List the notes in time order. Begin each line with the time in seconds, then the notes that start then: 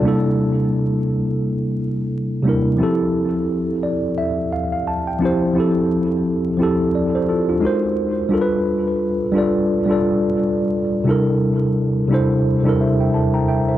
0.02 C3 G3 A#3 D4
0.06 E4 A4
2.43 C3 G3 A#3 D4
2.48 E4 A#4
2.77 F3 C4 E4
2.82 G4 A4
3.83 D5
4.18 E5
4.53 F5
4.72 F5
4.87 A5
5.07 G5
5.19 F3 C4 E4
5.24 G4 C5
5.53 F3 C4 E4
5.58 G4 A4
6.57 F3 C4 E4
6.62 G4 A4
6.95 D5
7.15 A4 C5
7.29 F4 A4
7.49 D4 F4
7.60 G#3 D#4 F#4
7.65 A#4 C5
8.29 G3 D4 F4
8.33 A4 A#4
8.41 B4
9.32 G3 D4 F4
9.37 A4 D5
9.86 G3 D4 F4
9.91 A4 D5
11.04 C3 G3 D4 E4
11.09 A4 A#4
12.08 C3 G3 D4 E4
12.13 A4 C5
12.63 C3 G3 D4 E4
12.68 A4 A#4
12.81 C5 E5
13.00 E5 G5
13.14 A5
13.34 G5 A#5
13.48 E5 G5
13.68 C5 E5